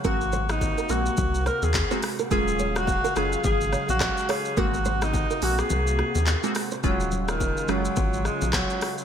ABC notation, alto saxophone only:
X:1
M:4/4
L:1/16
Q:"Swing 16ths" 1/4=106
K:Ebdor
V:1 name="Alto saxophone"
G3 E3 G4 B A3 z2 | A3 G3 A2 A3 G3 A2 | G3 E3 G A6- A z2 | G,2- G,/2 G,/2 E,3 G,4 A,2 G,3 z |]